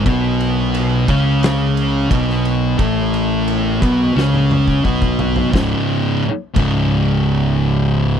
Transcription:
<<
  \new Staff \with { instrumentName = "Distorted electric guitar" } { \clef bass \time 4/4 \key a \lydian \tempo 4 = 88 <b, b>4. <cis cis'>4. <b, b>4 | <a, a>4. <b, b>8 <cis cis'>4 <b, b>4 | <cis, gis, cis>8 r4 <cis, gis, cis>2~ <cis, gis, cis>8 | }
  \new Staff \with { instrumentName = "Distorted electric guitar" } { \clef bass \time 4/4 \key a \lydian <b, b>4. <cis cis'>4. <b, b>4 | <a, a>4. <b, b>8 <cis cis'>4 <b, b>4 | <cis, gis, cis>8 r4 <cis, gis, cis>2~ <cis, gis, cis>8 | }
  \new Staff \with { instrumentName = "Fingered electric bass" } { \clef bass \time 4/4 \key a \lydian b,,4. cis,4. b,,4 | a,,4. b,,8 cis,4 b,,4 | cis,,8 r4 cis,,2~ cis,,8 | }
  \new DrumStaff \with { instrumentName = "Drums" } \drummode { \time 4/4 <bd cymr>8 cymr8 cymr8 <bd cymr>8 <cymr sn>8 cymr8 <bd cymr>16 sn16 cymr8 | <bd cymr>8 cymr8 cymr8 <bd cymr>8 sn16 tommh16 toml16 bd16 bd16 bd16 tomfh16 tomfh16 | <bd sn>4 r8 <cymc bd>8 r4 r4 | }
>>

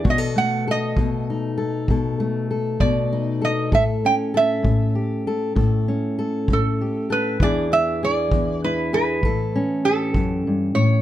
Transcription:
<<
  \new Staff \with { instrumentName = "Resonator guitar played with a steel bar" } { \time 12/8 \key a \major \tempo 4. = 65 dis''8 fis''8 dis''4 r2 r8 d''4 dis''8 | e''8 g''8 e''4 r2 r8 a'4 b'8 | d''8 e''8 d''4 b'8 b'4 r8 a'4. cis''8 | }
  \new Staff \with { instrumentName = "Steel-string acoustic guitar" } { \time 12/8 \key a \major << { fis'16 a'16 a8 a'4 dis'8 a'8 a'8 a8 a'4 dis'8 a'8 | a'8 cis'8 a'4 g'8 a'8 a'8 cis'8 a'4 g'8 a'8 | <e d' e' gis'>8 d'8 gis'4 e'8 gis'8 a'8 cis'8 g'2 | } \\ { b,4. b,4. b,4. b,4. | a,4. a,4. a,4. a,4. | e,4. e,4. a,4. fis,8 g,8 a,8 | } >> }
  \new DrumStaff \with { instrumentName = "Drums" } \drummode { \time 12/8 bd4. bd4. bd4. bd4. | bd4. bd4. bd4. bd4. | bd4. bd4. bd4. bd4. | }
>>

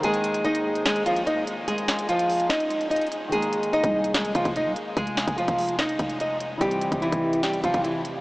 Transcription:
<<
  \new Staff \with { instrumentName = "Nylon-string guitar" } { \time 4/4 \key aes \major \tempo 4 = 146 <aes aes'>4 <ees' ees''>4 <aes aes'>8 <f f'>8 <ees' ees''>8 r8 | <aes aes'>4 <f f'>4 <ees' ees''>4 <ees' ees''>8 r8 | <aes aes'>4 <ees' ees''>4 <aes aes'>8 <f f'>8 <ees' ees''>8 r8 | <aes aes'>4 <f f'>4 <ees' ees''>4 <ees' ees''>8 r8 |
<g g'>4 <e e'>4 <g g'>8 <f f'>8 <e e'>8 r8 | }
  \new Staff \with { instrumentName = "Grand piano" } { \time 4/4 \key aes \major <ees aes bes aes'>1~ | <ees aes bes aes'>1 | <ees aes bes aes'>1~ | <ees aes bes aes'>1 |
<e g c' g'>1 | }
  \new Staff \with { instrumentName = "808-style bass" } { \clef bass \time 4/4 \key aes \major r1 | r1 | r4 r16 c,4~ c,16 f,,16 f,,8 c,16 r8 | f,,8. f,,8 f,,4~ f,,16 f,,4. |
f,,8. f,,8 f,,4~ f,,16 f,,16 f,,4~ f,,16 | }
  \new DrumStaff \with { instrumentName = "Drums" } \drummode { \time 4/4 hh16 hh16 hh16 hh16 hh16 hh8 hh16 <hh sn>16 hh16 hh16 hh16 hh8 hh8 | hh16 hh16 <hh sn>16 hh16 hh16 hh16 hho16 hh16 <hh sn>16 hh16 hh16 hh16 hh32 hh32 hh32 hh32 hh8 | hh16 hh16 hh16 hh16 hh16 <hh bd>8 hh16 <hh sn>16 hh16 <hh bd>16 <hh bd>16 hh8 hh8 | <hh bd>16 hh16 <hh sn>16 <hh bd>16 hh16 <hh bd>16 hho16 hh16 <hh sn>16 hh16 <hh bd>16 hh16 hh8 hh8 |
<hh bd>16 hh16 hh16 <hh bd>16 hh16 <hh bd>8 hh16 <hh sn>16 hh16 <hh bd>16 <hh bd>16 hh8 hh8 | }
>>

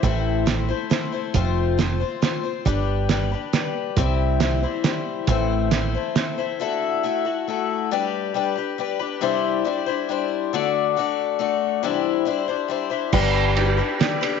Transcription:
<<
  \new Staff \with { instrumentName = "Twelve-string acoustic guitar" } { \time 3/4 \key g \major \tempo 4 = 137 <a, e a c' e' c''>4 <a c' e' c''>8 <a c' e' c''>8 <a c' e' c''>8 <a c' e' c''>8 | <f a c' f' c''>4 <a c' f' c''>8 <c' f' c''>8 <a c' f' c''>8 <c' f' c''>8 | <g d' g' b'>4 <g d' g' b'>8 <d' g' b'>8 <g d' g' b'>4 | <c e g c' e' c''>4 <g c' e' c''>8 <g c' e' c''>8 <g c' e' c''>4 |
<a, e a c' e' c''>4 <a c' e' c''>8 <a c' e' c''>8 <a c' e' c''>8 <a c' e' c''>8 | <d a e' fis' a'>4 <a e' fis' a'>8 <e' fis' a'>8 <a e' fis' a'>4 | <g d' g' b'>4 <g d' g' b'>8 <d' g' b'>8 <g d' g' b'>8 <d' g' b'>8 | <c e g d' e' c''>4 <g d' e' c''>8 <g d' e' c''>8 <g d' e' c''>4 |
<d a d' fis' d''>4 <a d' fis' d''>4 <a d' fis' d''>4 | <c e g d' e' c''>4 <g d' e' c''>8 <g d' e' c''>8 <g d' e' c''>8 <g d' e' c''>8 | <g d' g' b'>4 <g d' g' b'>8 <d' g' b'>8 <g d' g' b'>8 <d' g' b'>8 | }
  \new Staff \with { instrumentName = "Picked electric bass" } { \clef bass \time 3/4 \key g \major a,,2 r4 | f,,2 r4 | g,,2 r4 | c,2 r4 |
a,,2 r4 | r2. | r2. | r2. |
r2. | r2. | g,,2 r4 | }
  \new DrumStaff \with { instrumentName = "Drums" } \drummode { \time 3/4 <hh bd>4 <hh sn>4 <hh sn>4 | <hh bd>4 <hh sn>4 <hh sn>4 | <hh bd>4 <hh sn>4 <hh sn>4 | <hh bd>4 <hh sn>4 <hh sn>4 |
<hh bd>4 <hh sn>4 <hh sn>4 | r4 r4 r4 | r4 r4 r4 | r4 r4 r4 |
r4 r4 r4 | r4 r4 r4 | <cymc bd>4 cymr4 <cymr sn>8 cymr8 | }
>>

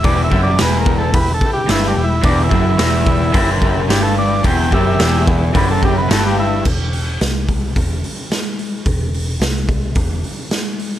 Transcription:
<<
  \new Staff \with { instrumentName = "Transistor combo organ" } { \time 4/4 \key e \minor \tempo 4 = 109 \tuplet 3/2 { d''8 e''8 d''8 b'8 ais'8 a'8 b'8 a'8 g'8 e'8 g'8 e'8 } | \tuplet 3/2 { d'8 e'4~ } e'4~ e'16 r8. g'16 a'16 d''8 | g''8 <g' e''>4 r8 b'16 a'16 g'16 b'16 a'16 g'16 e'8 | r1 |
r1 | }
  \new Staff \with { instrumentName = "Transistor combo organ" } { \time 4/4 \key e \minor <e' g' b'>8 <e' g' b'>8 <e' g' b'>8 <e' g' b'>8 <e' g' b'>8 <e' g' b'>8 <e' g' b'>8 <e' g' b'>8 | <e' g' b'>8 <e' g' b'>8 <e' g' b'>8 <e' g' b'>8 <e' g' b'>8 <e' g' b'>8 <e' g' b'>8 <e' g' b'>8 | <e' g' b'>8 <e' g' b'>8 <e' g' b'>8 <e' g' b'>8 <e' g' d''>8 <e' g' b'>8 <e' g' b'>8 <e' g' b'>8 | r1 |
r1 | }
  \new Staff \with { instrumentName = "Overdriven electric guitar" } { \clef bass \time 4/4 \key e \minor e,8 fis,8 e,4 e,8 r8 g,8 e,8 | e,8 fis,8 e,4 fis,4 g,4 | e,8 fis,8 e,4 fis,4 g,4 | r1 |
r1 | }
  \new Staff \with { instrumentName = "Picked electric bass" } { \clef bass \time 4/4 \key e \minor e,,8 fis,,8 e,,4 e,,8 r8 g,,8 e,,8 | e,,8 fis,,8 e,,4 fis,,4 g,,4 | e,,8 fis,,8 e,,4 fis,,4 g,,4 | e,,4 c,4 e,,8 r4. |
e,,4 c,4 e,,8 r4. | }
  \new DrumStaff \with { instrumentName = "Drums" } \drummode { \time 4/4 <hho bd>8 bd8 <hho sn>8 bd8 <hho bd>8 bd8 <hho sn>16 sn8. | <hho bd>8 bd8 <hho sn>8 bd8 <hho bd>8 bd8 <hho sn>4 | <hho bd>8 bd8 <hho sn>8 bd8 <hho bd>8 bd8 <hho sn>4 | <cymc bd>8 hho8 <hho sn>8 <hho bd>8 <hho bd>8 hho8 <hho sn>8 hho8 |
<hho bd>8 hho8 <hho sn>8 <hho bd>8 <hho bd>8 hho8 <hho sn>8 hho8 | }
>>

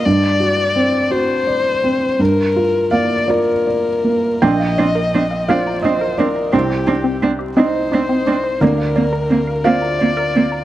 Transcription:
<<
  \new Staff \with { instrumentName = "Violin" } { \time 6/8 \key bes \major \tempo 4. = 57 d''4. c''4. | bes'4 d''8 bes'4. | ees''4. d''8 c''8 bes'8 | g'4 r8 c''4. |
bes'4. d''4. | }
  \new Staff \with { instrumentName = "Synth pluck" } { \time 6/8 \key bes \major r2. | r2. | bes'16 f''16 d''16 bes'16 r16 f''16 bes'16 bes''16 d''16 bes'16 r16 bes''16 | c'16 g'16 ees'16 c'16 r16 g'16 c'16 c''16 ees'16 c'16 r16 c''16 |
bes'16 f''16 d''16 bes'16 r16 f''16 bes'16 bes''16 d''16 bes'16 r16 bes''16 | }
  \new Staff \with { instrumentName = "Felt piano" } { \time 6/8 \key bes \major << { r2. | r4 f''8 d''4. | g''4. f''8 ees''8 d''8 | c''4 r8 ees''4. |
d''4. f''4. | } \\ { g,8 fis'8 c'8 fis'8 d''8 c'8 | g,8 f'8 bes8 f'8 d''8 bes8 | bes,,4. <f' c''>4. | c,4. ees'4. |
d,4. <f' c''>4. | } >> }
  \new Staff \with { instrumentName = "Viola" } { \time 6/8 \key bes \major r2. | r2. | d'8 d'8 d'8 d'8 d'8 d'8 | d'8 d'8 d'8 d'8 d'8 d'8 |
c'8 c'8 c'8 c'8 c'8 c'8 | }
  \new Staff \with { instrumentName = "Cello" } { \time 6/8 \key bes \major r2. | r2. | c'8 c'8 c'8 c'8 c'8 c'8 | c'8 c'8 c'8 c'8 c'8 c'8 |
bes8 bes8 bes8 bes8 bes8 bes8 | }
>>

